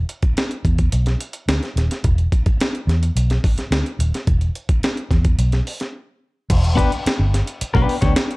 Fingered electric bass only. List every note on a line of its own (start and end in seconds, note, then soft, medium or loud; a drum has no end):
0.23 muted fingered electric bass stroke soft
0.65 0.86 E2 medium
0.93 1.14 B1 medium
1.48 1.59 D2 medium
1.76 1.87 D#1 medium
2.04 2.26 E1 loud
2.46 muted fingered electric bass stroke soft
2.87 3.09 E2 medium
3.16 3.37 B1 medium
3.71 3.82 D2 medium
3.99 4.10 D#1 medium
4.27 4.49 E1 medium
4.69 muted fingered electric bass stroke soft
5.11 5.32 E2 medium
5.38 5.60 B1 medium
6.50 6.82 E1 loud
7.06 muted fingered electric bass stroke soft
7.19 7.41 G1 loud
7.61 muted fingered electric bass stroke soft
7.75 7.85 B1 loud
8.02 8.13 D2 loud